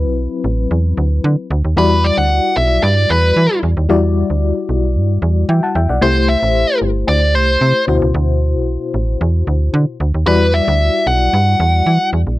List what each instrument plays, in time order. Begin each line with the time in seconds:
Already playing: fm electric piano F#3 C4 E4 B4
0.05 fm bass B1
0.44 fm bass A1
0.71 fm bass E2
0.97 fm bass D2
1.24 fm bass D3
1.50 fm bass D2
1.64 fm bass D#2
1.76 fm bass E2, fm electric piano G3 E4 F#4 D5, lead electric guitar B4
2.04 lead electric guitar D5
2.18 fm bass D2, lead electric guitar F#5
2.57 fm bass B1, lead electric guitar E5
2.83 fm bass G2, lead electric guitar D5
3.10 fm bass E2, lead electric guitar B4
3.36 fm bass E3
3.63 fm bass E2
3.77 fm bass D#2
3.89 fm bass E2, fm electric piano G3 E4 F#4 D5
4.30 fm bass D2
4.69 fm bass B1
4.96 fm bass G2
5.22 fm bass E2
5.49 fm bass E3, fm electric piano E5 G5
5.63 fm electric piano F#5 A5
5.75 fm bass E2, fm electric piano E5 G5
5.89 fm bass B1, fm electric piano D5 F#5
6.01 fm bass C2, fm electric piano A3 E4 G4 C5, lead electric guitar C5
6.29 lead electric guitar E5
6.43 fm bass A1
6.82 fm bass G1
7.08 fm bass D2, lead electric guitar D5
7.34 fm bass C2, lead electric guitar C5
7.61 fm bass C3
7.87 fm bass D2, fm electric piano B2 E4 F#4 C5
8.02 fm bass C#2
8.14 fm bass D2
8.55 fm bass B1
8.94 fm bass A1
9.21 fm bass E2
9.47 fm bass D2
9.74 fm bass D3
10.00 fm bass D2
10.14 fm bass D#2
10.26 fm bass E2, fm electric piano G3 E4 F#4 D5, lead electric guitar B4
10.54 lead electric guitar E5
10.68 fm bass D2
11.07 fm bass B1, lead electric guitar F#5
11.33 fm bass G2
11.60 fm bass E2
11.86 fm bass E3
12.13 fm bass E2
12.27 fm bass A#1